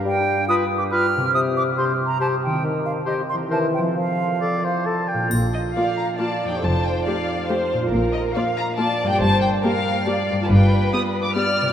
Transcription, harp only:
\new Staff \with { instrumentName = "Harp" } { \time 3/4 \key bes \major \tempo 4 = 139 <g, d' f' g' b'>2. | <c c' g' c''>2. | <ees c' g' c''>2 <e c' bes' c''>4 | <f c' a' c''>2. |
<bes, d' f' bes'>2. | <f, ees' g' a'>2. | <bes, d' f' bes'>2. | <g, d' g' bes'>2. |
<g, d' f' b'>2. | }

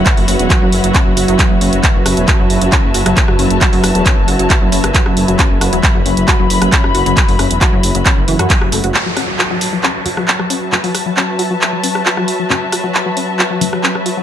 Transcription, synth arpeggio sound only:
\new Staff \with { instrumentName = "Synth arpeggio sound" } { \time 4/4 \key fis \minor \tempo 4 = 135 r16 fis16 cis'16 r16 fis'16 fis16 r16 fis16 cis'16 r16 fis'16 fis16 r16 fis16 cis'16 r16 | r16 fis16 cis'16 r16 fis'16 fis16 r16 fis16 cis'16 r16 fis'16 fis16 r16 fis16 cis'16 r16 | fis'16 fis16 r16 fis16 cis'16 r16 fis'16 fis16 r16 fis16 cis'16 r16 fis'16 fis16 r16 fis16 | cis'16 r16 fis'16 fis16 r16 fis16 cis'16 r16 fis'16 fis16 r16 fis16 cis'16 r16 fis'16 fis16 |
r16 fis16 cis'16 r16 fis'16 fis16 r16 fis16 cis'16 r16 e16 fis'16 r16 fis16 a16 fis'16 | r16 fis16 cis'16 r16 fis'16 fis16 r16 fis16 cis'16 r16 fis'16 fis16 r16 fis16 cis'16 r16 | fis'16 fis16 r16 fis16 cis'16 r16 fis'16 fis16 r16 fis16 cis'16 r16 fis'16 fis16 r16 fis16 | cis'16 r16 fis'16 fis16 r16 fis16 cis'16 r16 fis'16 fis16 r16 fis16 cis'16 r16 fis'16 fis16 | }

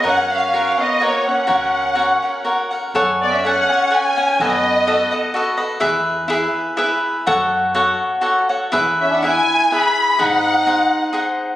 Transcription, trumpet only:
\new Staff \with { instrumentName = "Trumpet" } { \time 3/4 \key fis \major \tempo 4 = 125 cis'8 cis'4 b8 ais8 cis'8~ | cis'2~ cis'8 r8 | \key fis \minor r8 b16 cis'16 cis'4 cis'4 | b2 r4 |
r2. | r2. | r8 cis'16 d'16 e'4 gis'4 | dis'2 r4 | }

